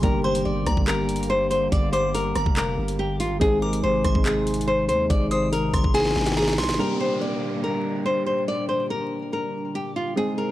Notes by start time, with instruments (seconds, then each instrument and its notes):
0.02 808-style bass G1, ambient pad D3 G3 A#3 G4, synth keys G3 A#3 D4 G4, nylon-string guitar A#4, kick, closed hi-hat
0.24 nylon-string guitar C5, synth bell C6
0.35 closed hi-hat
0.45 808-style bass G1, nylon-string guitar D5
0.66 808-style bass D2, synth bell A#5, kick, cross-stick, closed hi-hat
0.77 808-style bass G1, kick
0.88 nylon-string guitar A#4, clap, closed hi-hat
1.09 closed hi-hat
1.16 closed hi-hat
1.23 closed hi-hat
1.30 nylon-string guitar C5
1.50 nylon-string guitar C5, closed hi-hat
1.72 808-style bass G1, nylon-string guitar D5, kick, closed hi-hat
1.93 nylon-string guitar C5, synth bell D6, closed hi-hat
2.15 nylon-string guitar A#4, closed hi-hat
2.35 808-style bass G1, synth bell A#5, cross-stick, closed hi-hat
2.46 808-style bass F1, kick
2.57 nylon-string guitar A#4, clap, closed hi-hat
2.78 808-style bass G1
2.88 closed hi-hat
2.99 nylon-string guitar G4
3.20 808-style bass G#1, nylon-string guitar F4, closed hi-hat
3.31 808-style bass G1
3.40 808-style bass G#1, ambient pad C3 D#3 G#3 D#4, synth keys G#3 C4 D#4 G#4, nylon-string guitar G#4, kick, closed hi-hat
3.62 nylon-string guitar A#4, synth bell D6
3.73 closed hi-hat
3.83 808-style bass G#1, nylon-string guitar C5
4.04 808-style bass G#1, synth bell C6, kick, cross-stick, closed hi-hat
4.15 808-style bass G#1, kick
4.25 nylon-string guitar G#4, clap, closed hi-hat
4.47 closed hi-hat
4.54 closed hi-hat
4.61 closed hi-hat
4.67 nylon-string guitar C5
4.88 808-style bass D#2, nylon-string guitar C5, closed hi-hat
5.10 808-style bass G#1, nylon-string guitar D5, kick, closed hi-hat
5.31 nylon-string guitar C5, synth bell D#6, closed hi-hat
5.53 nylon-string guitar A#4, closed hi-hat
5.74 808-style bass G1, synth bell C6, kick, cross-stick, closed hi-hat
5.84 808-style bass G#1, kick
5.94 nylon-string guitar G#4, synth bell G#5, snare, closed hi-hat
6.00 snare
6.05 snare
6.11 snare
6.16 808-style bass G#1, snare
6.21 snare
6.26 nylon-string guitar G4, snare, closed hi-hat
6.32 snare
6.37 nylon-string guitar G#4, synth bell A#5, snare
6.42 snare
6.48 snare
6.53 snare
6.58 808-style bass C2, synth bell C6, snare, open hi-hat
6.64 snare
6.69 808-style bass G#1, snare
6.74 synth keys G3, snare
6.78 ambient pad A#2 D3 G3 D4, synth keys A#3 D4 G4, nylon-string guitar A#4, downlifter
7.00 nylon-string guitar C5
7.21 nylon-string guitar D5
7.64 nylon-string guitar A#4
8.06 nylon-string guitar C5
8.26 nylon-string guitar C5
8.48 nylon-string guitar D5
8.69 nylon-string guitar C5
8.90 nylon-string guitar A#4
9.33 nylon-string guitar A#4
9.75 nylon-string guitar G4
9.96 nylon-string guitar F4
10.16 ambient pad C3 D#3 G#3 D#4, synth keys G#3 C4 D#4 G#4, nylon-string guitar G#4, swell
10.38 nylon-string guitar A#4